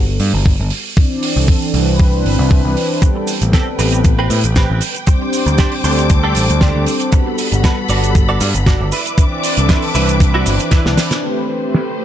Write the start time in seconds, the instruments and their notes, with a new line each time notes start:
Already playing: picked electric bass G1
0.20 picked electric bass G2, open hi-hat
0.34 picked electric bass G1
0.46 kick
0.59 picked electric bass G1
0.70 open hi-hat
0.96 analog synth pad E3 C4 D4 D5, kick
1.23 open hi-hat
1.36 picked electric bass C2, analog synth pad E3 C4 D4 A4
1.48 kick
1.62 open hi-hat
1.73 picked electric bass C2, analog synth pad E3 C4 D4 B4, open hi-hat
1.87 analog synth pad E3 C4 D4 B4
2.00 kick
2.24 picked electric bass G1, analog synth pad E3 C4 D4 B4, open hi-hat
2.39 picked electric bass C2
2.51 kick
2.64 picked electric bass C2
2.77 open hi-hat
3.01 analog synth pad G3 B3 C4 A4, string section B4 G5, muted clean electric guitar stroke, kick, closed hi-hat, cabasa
3.16 muted clean electric guitar stroke
3.27 open hi-hat, cabasa
3.41 picked electric bass A1, analog synth pad G3 B3 C4 A4, closed hi-hat, cabasa
3.53 clean electric guitar C4 G4 A4, kick, snare, closed hi-hat, cabasa
3.78 picked electric bass A1, analog synth pad G3 B3 C4 A4, clean electric guitar C4 G4 B4, open hi-hat, cabasa
3.92 analog synth pad G3 B3 C4 A4, closed hi-hat, cabasa
4.04 kick, closed hi-hat, cabasa
4.19 clean electric guitar C4 G4 B4
4.30 picked electric bass A2, open hi-hat, cabasa
4.44 picked electric bass A1, closed hi-hat, cabasa
4.56 clean electric guitar C4 G4 B4, kick, snare, closed hi-hat, cabasa
4.70 picked electric bass A1
4.81 open hi-hat, cabasa
4.95 closed hi-hat, cabasa
5.06 analog synth pad G3 C4 D4 C5, string section C5 D6, muted clean electric guitar stroke, kick, closed hi-hat, cabasa
5.21 muted clean electric guitar stroke
5.33 open hi-hat, cabasa
5.46 picked electric bass D2, analog synth pad G3 C4 D4 G4, closed hi-hat, cabasa
5.58 clean electric guitar D4 G4 C5, kick, snare, closed hi-hat, cabasa
5.72 open hi-hat
5.83 picked electric bass D2, analog synth pad G3 C4 D4 A4, clean electric guitar D4 G4 C5, open hi-hat, cabasa
5.97 analog synth pad G3 C4 D4 A4, closed hi-hat, cabasa
6.10 kick, closed hi-hat, cabasa
6.24 clean electric guitar D4 G4 A4
6.35 picked electric bass A1, open hi-hat, cabasa
6.50 picked electric bass D2, closed hi-hat, cabasa
6.61 clean electric guitar D4 G4 C5, kick, snare, closed hi-hat, cabasa
6.75 picked electric bass D2
6.86 open hi-hat, cabasa
7.00 closed hi-hat, cabasa
7.12 analog synth pad G3 B3 F#4 A4, string section A4 F#5 B5, muted clean electric guitar stroke, kick, closed hi-hat, cabasa
7.26 muted clean electric guitar stroke
7.38 open hi-hat, cabasa
7.51 picked electric bass G1, analog synth pad G3 B3 F#4 A4, closed hi-hat, cabasa
7.64 clean electric guitar F#4 A4 B4, kick, snare, closed hi-hat, cabasa
7.88 picked electric bass G1, analog synth pad G3 B3 F#4 A4, clean electric guitar F#4 A4 D5, open hi-hat, cabasa
8.03 analog synth pad G3 B3 F#4 A4, closed hi-hat, cabasa
8.15 kick, closed hi-hat, cabasa
8.29 clean electric guitar F#4 A4 D5
8.41 picked electric bass G2, open hi-hat, cabasa
8.54 picked electric bass G1, closed hi-hat, cabasa
8.66 clean electric guitar F#4 A4 D5, kick, snare, closed hi-hat, cabasa
8.80 picked electric bass G1
8.92 clean electric guitar D4 E4 B4, string section B4 E5 D6, open hi-hat, cabasa
9.06 closed hi-hat, cabasa
9.17 analog synth pad E3 C4 D4 D5, kick, closed hi-hat, cabasa
9.32 muted clean electric guitar stroke
9.43 open hi-hat, cabasa
9.56 picked electric bass C2, analog synth pad E3 C4 D4 A4, closed hi-hat, cabasa
9.69 clean electric guitar D4 E4 B4, kick, snare, closed hi-hat, cabasa
9.82 open hi-hat
9.94 picked electric bass C2, analog synth pad E3 C4 D4 B4, clean electric guitar D4 E4 B4, open hi-hat, cabasa
10.07 analog synth pad E3 C4 D4 B4, closed hi-hat, cabasa
10.20 kick, closed hi-hat, cabasa
10.34 clean electric guitar D4 E4 F#4
10.46 picked electric bass G1, open hi-hat, cabasa
10.60 closed hi-hat, cabasa
10.71 clean electric guitar D4 E4 B4, kick, snare, closed hi-hat, cabasa
10.85 picked electric bass C2, snare
10.97 snare, open hi-hat, cabasa
11.11 snare, closed hi-hat, cabasa
11.22 analog synth pad A3 C4 G4 B4, string section A3 G4 B4 C5, cabasa
11.49 cabasa
11.62 analog synth pad A3 C4 G4 B4, cabasa
11.74 snare, cabasa
11.99 analog synth pad A3 C4 G4 B4, cabasa